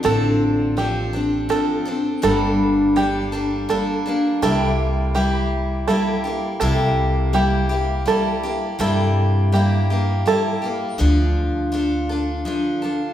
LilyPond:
<<
  \new Staff \with { instrumentName = "Five-string banjo" } { \time 3/4 \key d \minor \tempo 4 = 82 a'4 g'4 a'4 | a'4 g'4 a'4 | a'4 g'4 a'4 | a'4 g'4 a'4 |
a'4 g'4 a'4 | r2. | }
  \new Staff \with { instrumentName = "Steel-string acoustic guitar" } { \time 3/4 \key d \minor <d f c' d' a'>4 <f c' d' a'>8 <c' d' a'>8 <f c' d' a'>8 <c' d' a'>8 | <g, d g bes d' a'>4 <g bes d' a'>8 <g bes d' a'>8 <g bes d' a'>8 <g bes d' a'>8 | <c g bes e' g'>4 <g bes e' g'>4 <g bes e' g'>8 <bes e' g'>8 | <c g bes e' g'>4 <g bes e' g'>8 <bes e' g'>8 <g bes e' g'>8 <bes e' g'>8 |
<c g bes e' g'>4 <g bes e' g'>8 <bes e' g'>8 <g bes e' g'>8 <bes e' g'>8 | <d f d' f' a'>4 <f d' f' a'>8 <d' f' a'>8 <f d' f' a'>8 <d' f' a'>8 | }
  \new Staff \with { instrumentName = "Upright bass" } { \clef bass \time 3/4 \key d \minor a,,2 r4 | g,,2 r4 | c,2 r4 | c,2 r4 |
g,2 r4 | d,2 r4 | }
>>